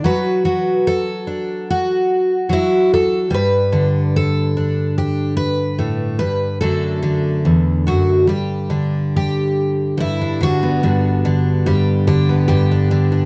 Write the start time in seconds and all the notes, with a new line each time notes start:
0.04 F#3 B4
0.45 F#3
0.87 A4
1.27 D4
1.70 F#4
2.49 F#3 E4
2.94 A4
3.30 G2 B4
3.72 D3
4.16 A4
4.57 D4
4.98 G4
5.37 B4
5.78 A2
6.19 G2 B4
6.61 F#2 D3 A3 D4 A4
7.03 D3
7.45 E2
7.87 F#2 F#4
8.27 G2 G4
8.70 D3
9.16 G4
9.98 G2 E4
10.21 D4
10.41 D3 F#4
10.63 B3
10.83 G2 D4
11.25 D3
11.66 G2 G4
12.07 D3 G4
12.29 B3
12.48 G2 G4
12.71 D4
12.91 D3
13.12 D4